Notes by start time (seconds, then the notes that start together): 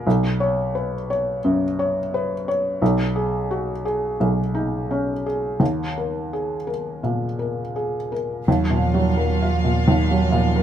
0.07 B1
0.40 C#5
0.75 B4
1.10 C#5
1.44 F#2
1.79 C#5
2.14 B4
2.48 C#5
2.82 B1
3.16 G#4
3.51 F#4
3.85 G#4
4.20 B1
4.55 D#4
4.91 C#4
5.26 G#4
5.60 D#2
5.98 A#4
6.33 G#4
6.67 A#4
7.03 A#2
7.39 A#4
7.76 G#4
8.12 A#4
8.46 D#2 F#3 A#3 F4 F5
8.70 A#2
8.81 F3
8.94 F#3
9.16 F#3 A#4
9.42 F4
9.50 F3
9.64 A#2
9.86 D#2 F#3
10.11 F#3
10.21 F3
10.32 A#2
10.56 F#3 A#4